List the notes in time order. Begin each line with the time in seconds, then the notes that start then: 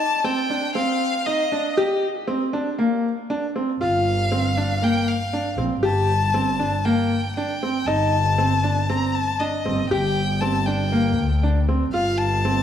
Already playing: A5
0.24 C4 G5
0.50 D4
0.75 C4 F5
1.26 D#4 D#5
1.52 D4
1.77 G4
2.27 C4
2.53 D4
2.79 A#3
3.30 D4
3.56 C4
3.80 G1 F4 F5
4.32 C4
4.57 D4
4.82 A#3 G5
5.08 F5
5.33 D4
5.58 A#1 C4
5.83 G1 G4 A5
6.34 C4
6.59 D4
6.85 A#3 G5
7.36 D4 G5
7.63 C4
7.87 G1 D#4 A5
8.38 C4
8.64 D4
8.89 C4 A#5
9.15 A5
9.40 D4 D#5
9.65 G1 C4
9.90 G1 G4 G5
10.41 C4 A5
10.66 D4 G5
10.92 A#3
11.18 D2
11.43 D4
11.69 C4
11.93 G1 F4 F5
12.18 A5
12.45 C4